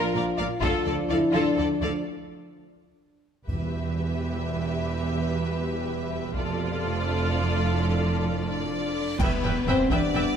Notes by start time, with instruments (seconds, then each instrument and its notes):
Already playing: trombone section F3 D4, violin section F4 A#4, french horn section F4, viola section A#4
0.13 double bass section A#1, cello section A#2, violin section A#4 D5, viola section A#4
0.38 double bass section A#1, cello section A#2, viola section A#4, violin section D5 F5
0.61 double bass section D2, cello section D3, trombone section F3 D4, violin section F4 A4, french horn section F4, viola section A4, taiko
0.84 double bass section D2, cello section D3, violin section A4 D5, viola section A4
1.09 double bass section D2, cello section D3, french horn section E4, viola section A4, violin section D5 F5
1.32 double bass section D2, cello section D3, french horn section D4, violin section F4 A4, viola section A4
1.56 double bass section D2, cello section D3, violin section A4 D5, viola section A4
1.81 double bass section D2, cello section D3, viola section A4, violin section D5 F5
3.46 double bass section E1, timpani E2, cello section E2, trombone section B2 E3, french horn section G3 G4, viola section G4, violin section B4 E5, taiko, triangle
4.55 taiko
6.34 double bass section F1, cello section F2, trombone section F3, french horn section A3, viola section F4, violin section A4 D5, taiko
7.05 trombone section A2, french horn section D4
7.76 reverse cymbal
8.48 french horn section D4, violin section D5
9.19 double bass section E1, cello section E2, trombone section G3 B3, french horn section B3, violin section B4 G5, viola section B4 E5, concert bass drum, taiko, crash, impact
9.43 double bass section E1, cello section E2, viola section B4 E5, violin section G5, taiko low-mid
9.67 double bass section E1, cello section E2, french horn section C4, viola section B4 E5, violin section C5 G5, taiko low-mid
9.90 double bass section E1, cello section E2, french horn section D4, viola section B4 E5, violin section D5 G5, taiko
10.14 double bass section E1, cello section E2, viola section B4 E5, violin section G5